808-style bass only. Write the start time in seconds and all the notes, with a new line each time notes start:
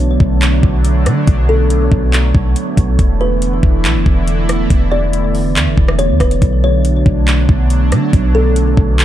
Already playing: B1
0.20 B1
0.63 B1
1.06 D3
1.28 B1
1.92 B1
2.35 B1
2.77 B1
2.99 E1
3.63 E1
3.85 B1
3.96 E1
4.06 E1
4.70 E1
5.56 E2
5.67 E1
5.78 E1
6.10 E2
6.20 E1
6.42 B1
7.06 B1
7.49 B1
7.92 D3
8.13 B1
8.77 B1